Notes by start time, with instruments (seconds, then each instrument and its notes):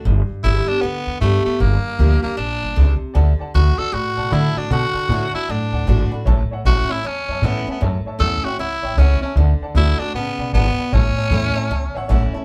0.05 upright bass G1, steel-string acoustic guitar G2
0.29 muted upright bass stroke
0.43 upright bass G1, steel-string acoustic guitar D3 G3 B3 G4, tenor saxophone E4
0.68 steel-string acoustic guitar B3 G4, tenor saxophone D4, muted upright bass stroke
0.81 upright bass D2, steel-string acoustic guitar D3, tenor saxophone B3
1.07 upright bass E2
1.21 upright bass G2, steel-string acoustic guitar D3 G3 B3 G4, tenor saxophone A3
1.45 tenor saxophone A3, steel-string acoustic guitar B3 G4, muted upright bass stroke
1.60 upright bass G1, steel-string acoustic guitar G2, tenor saxophone A#3
1.84 muted upright bass stroke
1.98 upright bass D2, steel-string acoustic guitar F3 A#3 D4 G4
2.22 tenor saxophone A#3, steel-string acoustic guitar D4 G4, muted upright bass stroke
2.37 upright bass A#1, steel-string acoustic guitar A#2, tenor saxophone D4
2.61 upright bass G1
2.76 upright bass C#2, steel-string acoustic guitar C3
3.02 muted upright bass stroke
3.14 upright bass D2, steel-string acoustic guitar D3, upright piano D5 F#5 A5
3.39 upright piano D5 F#5 A5, muted upright bass stroke
3.54 upright bass D2, steel-string acoustic guitar D3 A3 D4 F#4, tenor saxophone F#4, upright piano D5 B5
3.77 steel-string acoustic guitar D4 F#4, tenor saxophone A4, upright piano D5 F#5 A5, muted upright bass stroke
3.92 steel-string acoustic guitar A2, upright bass A2, tenor saxophone F#4, upright piano D5 B5
4.16 upright bass B2, upright piano D5 F#5 A5
4.30 steel-string acoustic guitar D3 A3 D4 F#4, upright bass D3, tenor saxophone E4, upright piano D5 F#5 B5
4.55 tenor saxophone D4, steel-string acoustic guitar D4 F#4, upright piano D5 F#5 A5, muted upright bass stroke
4.70 upright bass B2, steel-string acoustic guitar D3, tenor saxophone F#4, upright piano D5 F#5 A5
4.93 upright piano D5 F#5 A5, muted upright bass stroke
5.08 upright bass A2, steel-string acoustic guitar D3 A3 D4 F#4, upright piano D5 F#5 A5
5.32 tenor saxophone E4, steel-string acoustic guitar F#4, upright piano D5 F#5 A5, muted upright bass stroke
5.37 steel-string acoustic guitar D4
5.48 upright bass F#2, steel-string acoustic guitar A2, tenor saxophone D4, upright piano D5 F#5 A5
5.72 upright bass D2, upright piano D5 F#5 A5
5.86 upright bass G#1, steel-string acoustic guitar D3 A3 D4 F#4, upright piano D5 F#5 A5
6.10 steel-string acoustic guitar D4 F#4, upright piano D5 F#5 B5, muted upright bass stroke
6.25 upright bass A1, steel-string acoustic guitar A2, upright piano C#5 E5 A5
6.50 upright piano C#5 E5 F#5, muted upright bass stroke
6.65 upright bass A1, steel-string acoustic guitar E3 A3 C#4 E4, tenor saxophone F#4, upright piano C#5 E5 A5
6.89 steel-string acoustic guitar C#4 E4, tenor saxophone E4, upright piano C#5 E5 B5, muted upright bass stroke
7.03 upright bass E2, steel-string acoustic guitar E2, tenor saxophone C#4, upright piano C#5 E5 A5
7.28 upright bass F#2, upright piano C#5 E5 A5
7.42 upright bass A2, steel-string acoustic guitar E3 A3 C#4 E4, tenor saxophone B3, upright piano C#5 E5 A5
7.67 tenor saxophone B3, steel-string acoustic guitar C#4 E4, upright piano C#5 E5 A5, muted upright bass stroke
7.81 upright bass F#2, steel-string acoustic guitar A2, upright piano C#5 E5 A5
8.05 upright piano C#5 E5 A5, muted upright bass stroke
8.19 upright bass E2, steel-string acoustic guitar E3 A3 C#4 E4, tenor saxophone A4, upright piano C#5 E5 F#5
8.43 steel-string acoustic guitar C#4 E4, tenor saxophone F#4, upright piano C#5 E5 G5, muted upright bass stroke
8.58 upright bass C#2, steel-string acoustic guitar E2, tenor saxophone E4, upright piano C#5 E5 F#5
8.82 upright bass A1, upright piano C#5 E5 G5
8.97 upright bass C#2, steel-string acoustic guitar E3 A3 C#4 E4, tenor saxophone C#4, upright piano C#5 E5 F#5
9.21 tenor saxophone C#4, steel-string acoustic guitar C#4 E4, upright piano C#5 E5 A5, muted upright bass stroke
9.36 upright bass D2, steel-string acoustic guitar D3, upright piano D5 F#5
9.40 upright piano A5
9.60 upright piano D5 F#5 A5, muted upright bass stroke
9.74 upright bass D2, steel-string acoustic guitar D3 A3 D4 F#4, tenor saxophone E4, upright piano D5 A5
9.99 tenor saxophone D4, steel-string acoustic guitar D4 F#4, upright piano D5 F#5 A5, muted upright bass stroke
10.14 upright bass A2, steel-string acoustic guitar C#3, tenor saxophone B3, upright piano D5 F#5 A5
10.38 upright bass B2, upright piano D5 F#5 B5
10.53 upright bass G#1, steel-string acoustic guitar B2, tenor saxophone B3, upright piano D5 F#5 A5
10.77 upright piano D5 F#5 B5, muted upright bass stroke
10.92 upright bass A1, steel-string acoustic guitar A2, tenor saxophone C#4, upright piano C#5 E5 A5
11.16 upright piano C#5 E5 A5, muted upright bass stroke
11.30 upright bass E2, steel-string acoustic guitar E3 A3 C#4 E4, upright piano C#5 E5 B5
11.54 steel-string acoustic guitar C#4 E4, upright piano C#5 E5 A5, muted upright bass stroke
11.69 upright bass C#2, steel-string acoustic guitar E2, upright piano C#5 E5 A5
11.95 upright bass A1, upright piano C#5 E5 F#5
12.08 upright bass A1, steel-string acoustic guitar E3 A3 C#4 E4, upright piano C#5 E5 F#5
12.33 steel-string acoustic guitar C#4 E4, upright piano C#5 E5 A5, muted upright bass stroke